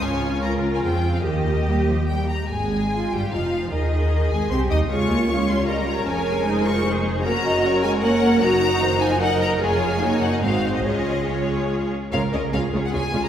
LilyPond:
<<
  \new Staff \with { instrumentName = "Violin section" } { \time 3/4 \key aes \major \tempo 4 = 150 aes''4 bes''8. aes''16 g''8. f''16 | ees''2 g''8 bes''8 | aes''4. g''8 f''4 | ees''4. aes''8 c'''8 ees'''8 |
des'''4. c'''8 bes''4 | aes''4. des'''8 r4 | \key des \major bes''4. aes''8 ges''4 | bes''4. aes''8 ges''8 bes''8 |
aes''4. ges''16 ees''16 f''8. ees''16 | ees''4 des''4. r8 | f''8 ees''8 f''8. ges''16 aes''8. bes''16 | }
  \new Staff \with { instrumentName = "Violin section" } { \time 3/4 \key aes \major << { des''4 bes'4 aes'4 | g'2~ g'8 r8 | aes'4. g'8 f'4 | ees'4. aes'8 c''8 ees''8 |
des''4 des''4 ees''8 des''8 | des''4 c''2 | \key des \major bes'8 ees''8 des''4 des''4 | bes'4 c''4 ees''4 |
des''4 des''4 c''4 | des''4 des''4. r8 | des''8 des''8 des''8 des''8 des''8 des''8 | } \\ { r2. | r2. | r2. | r2. |
aes'4 f'2 | aes'4 aes'4 aes'4 | ges'4 bes'2 | ges'8 ges'4. bes'4 |
aes'4 ges'4 ges'4 | f'4 f'4. r8 | f'8 f'8 f'8 f'8 f'8 f'8 | } >> }
  \new Staff \with { instrumentName = "Cello section" } { \time 3/4 \key aes \major des2 f4 | ees4 g8 f8 g8. aes16 | r4 f'4 ees'4 | aes'2 g'4 |
f'2 bes'4~ | bes'2 aes'4 | \key des \major ges'2 bes'4 | ges'4 ees'4 bes'4 |
aes'4 ees'4 c'4 | aes'2~ aes'8 r8 | bes'4 aes'2 | }
  \new Staff \with { instrumentName = "Viola section" } { \time 3/4 \key aes \major << { f'2. | g'2~ g'8 r8 | aes4. g8 f4 | ees4. aes8 c'8 ees'8 |
f'4 des'2 | des'4 ees'8 f'8 ees'4 | \key des \major des'4 des'2 | ees'2 ees'4 |
f'4 ees'4 ees'4 | des'4 des'4. r8 | des'8 des'8 des'8 des'8 des'8 des'8 | } \\ { des'2 c'4 | bes2~ bes8 r8 | r2. | r2. |
aes8 bes8 aes8 g4. | f8 aes4. aes8 aes8 | bes4 ges8 aes8 bes8 bes8 | ges4 ees8 f8 ges4 |
aes4 bes4 aes4 | aes4 aes4. r8 | aes8 aes8 aes8 aes8 aes8 aes8 | } >> }
  \new Staff \with { instrumentName = "Double bass section" } { \clef bass \time 3/4 \key aes \major des,2 f,4 | ees,2~ ees,8 r8 | aes,,4. g,,8 f,,4 | ees,4. aes,,8 c,8 ees,8 |
des,2. | f,,2. | \key des \major ges,,2. | ges,,2. |
f,,4 ges,,4 aes,,4 | des,2~ des,8 r8 | des,8 des,8 des,8 des,8 des,8 des,8 | }
>>